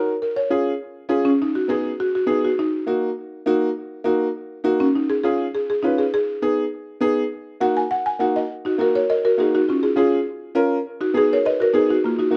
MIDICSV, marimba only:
0, 0, Header, 1, 2, 480
1, 0, Start_track
1, 0, Key_signature, -6, "minor"
1, 0, Tempo, 295567
1, 344, Time_signature, 4, 2, 24, 8
1, 20086, End_track
2, 0, Start_track
2, 0, Title_t, "Marimba"
2, 0, Program_c, 0, 12
2, 0, Note_on_c, 0, 70, 66
2, 339, Note_off_c, 0, 70, 0
2, 358, Note_on_c, 0, 70, 73
2, 585, Note_off_c, 0, 70, 0
2, 592, Note_on_c, 0, 73, 98
2, 1521, Note_off_c, 0, 73, 0
2, 2030, Note_on_c, 0, 61, 94
2, 2262, Note_off_c, 0, 61, 0
2, 2303, Note_on_c, 0, 63, 84
2, 2518, Note_off_c, 0, 63, 0
2, 2522, Note_on_c, 0, 66, 86
2, 2748, Note_off_c, 0, 66, 0
2, 2761, Note_on_c, 0, 68, 106
2, 3221, Note_off_c, 0, 68, 0
2, 3248, Note_on_c, 0, 66, 90
2, 3471, Note_off_c, 0, 66, 0
2, 3497, Note_on_c, 0, 66, 85
2, 3716, Note_off_c, 0, 66, 0
2, 3744, Note_on_c, 0, 63, 72
2, 3960, Note_off_c, 0, 63, 0
2, 3972, Note_on_c, 0, 66, 82
2, 4194, Note_off_c, 0, 66, 0
2, 4210, Note_on_c, 0, 63, 95
2, 5598, Note_off_c, 0, 63, 0
2, 7798, Note_on_c, 0, 61, 108
2, 8028, Note_off_c, 0, 61, 0
2, 8046, Note_on_c, 0, 63, 76
2, 8272, Note_off_c, 0, 63, 0
2, 8276, Note_on_c, 0, 68, 91
2, 8484, Note_off_c, 0, 68, 0
2, 8503, Note_on_c, 0, 68, 89
2, 8973, Note_off_c, 0, 68, 0
2, 9007, Note_on_c, 0, 68, 83
2, 9232, Note_off_c, 0, 68, 0
2, 9253, Note_on_c, 0, 68, 91
2, 9462, Note_on_c, 0, 63, 73
2, 9475, Note_off_c, 0, 68, 0
2, 9700, Note_off_c, 0, 63, 0
2, 9719, Note_on_c, 0, 68, 91
2, 9948, Note_off_c, 0, 68, 0
2, 9968, Note_on_c, 0, 68, 106
2, 11357, Note_off_c, 0, 68, 0
2, 12362, Note_on_c, 0, 78, 100
2, 12589, Note_off_c, 0, 78, 0
2, 12614, Note_on_c, 0, 80, 90
2, 12835, Note_off_c, 0, 80, 0
2, 12842, Note_on_c, 0, 78, 101
2, 13069, Note_off_c, 0, 78, 0
2, 13088, Note_on_c, 0, 80, 96
2, 13312, Note_off_c, 0, 80, 0
2, 13319, Note_on_c, 0, 78, 84
2, 13548, Note_off_c, 0, 78, 0
2, 13577, Note_on_c, 0, 75, 98
2, 13797, Note_off_c, 0, 75, 0
2, 14048, Note_on_c, 0, 63, 68
2, 14063, Note_on_c, 0, 66, 83
2, 14152, Note_off_c, 0, 63, 0
2, 14164, Note_off_c, 0, 66, 0
2, 14302, Note_on_c, 0, 66, 75
2, 14312, Note_on_c, 0, 70, 89
2, 14403, Note_off_c, 0, 66, 0
2, 14410, Note_off_c, 0, 70, 0
2, 14541, Note_on_c, 0, 70, 65
2, 14542, Note_on_c, 0, 73, 88
2, 14749, Note_off_c, 0, 70, 0
2, 14772, Note_off_c, 0, 73, 0
2, 14773, Note_on_c, 0, 70, 73
2, 14776, Note_on_c, 0, 75, 101
2, 14985, Note_off_c, 0, 70, 0
2, 15009, Note_off_c, 0, 75, 0
2, 15018, Note_on_c, 0, 70, 94
2, 15024, Note_on_c, 0, 66, 75
2, 15228, Note_off_c, 0, 70, 0
2, 15231, Note_off_c, 0, 66, 0
2, 15267, Note_on_c, 0, 68, 78
2, 15270, Note_on_c, 0, 63, 69
2, 15472, Note_off_c, 0, 68, 0
2, 15474, Note_off_c, 0, 63, 0
2, 15505, Note_on_c, 0, 66, 84
2, 15512, Note_on_c, 0, 63, 72
2, 15715, Note_off_c, 0, 63, 0
2, 15730, Note_on_c, 0, 65, 83
2, 15733, Note_off_c, 0, 66, 0
2, 15747, Note_on_c, 0, 61, 74
2, 15943, Note_off_c, 0, 65, 0
2, 15952, Note_off_c, 0, 61, 0
2, 15962, Note_on_c, 0, 68, 89
2, 15973, Note_on_c, 0, 65, 67
2, 16067, Note_off_c, 0, 68, 0
2, 16075, Note_off_c, 0, 65, 0
2, 16205, Note_on_c, 0, 68, 80
2, 16219, Note_on_c, 0, 65, 65
2, 16643, Note_off_c, 0, 68, 0
2, 16650, Note_off_c, 0, 65, 0
2, 17874, Note_on_c, 0, 63, 72
2, 17881, Note_on_c, 0, 66, 86
2, 18093, Note_off_c, 0, 63, 0
2, 18097, Note_off_c, 0, 66, 0
2, 18138, Note_on_c, 0, 63, 75
2, 18147, Note_on_c, 0, 68, 95
2, 18346, Note_off_c, 0, 63, 0
2, 18350, Note_off_c, 0, 68, 0
2, 18393, Note_on_c, 0, 70, 68
2, 18402, Note_on_c, 0, 73, 97
2, 18593, Note_off_c, 0, 70, 0
2, 18598, Note_off_c, 0, 73, 0
2, 18603, Note_on_c, 0, 71, 84
2, 18615, Note_on_c, 0, 75, 112
2, 18817, Note_off_c, 0, 71, 0
2, 18842, Note_on_c, 0, 66, 82
2, 18846, Note_off_c, 0, 75, 0
2, 18868, Note_on_c, 0, 70, 100
2, 19055, Note_on_c, 0, 63, 62
2, 19056, Note_off_c, 0, 66, 0
2, 19070, Note_off_c, 0, 70, 0
2, 19080, Note_on_c, 0, 68, 85
2, 19165, Note_off_c, 0, 63, 0
2, 19184, Note_off_c, 0, 68, 0
2, 19315, Note_on_c, 0, 63, 63
2, 19332, Note_on_c, 0, 66, 90
2, 19420, Note_off_c, 0, 63, 0
2, 19433, Note_off_c, 0, 66, 0
2, 19560, Note_on_c, 0, 58, 69
2, 19580, Note_on_c, 0, 65, 81
2, 19774, Note_off_c, 0, 58, 0
2, 19785, Note_off_c, 0, 65, 0
2, 19791, Note_on_c, 0, 63, 67
2, 19802, Note_on_c, 0, 66, 82
2, 20009, Note_off_c, 0, 63, 0
2, 20015, Note_off_c, 0, 66, 0
2, 20086, End_track
0, 0, End_of_file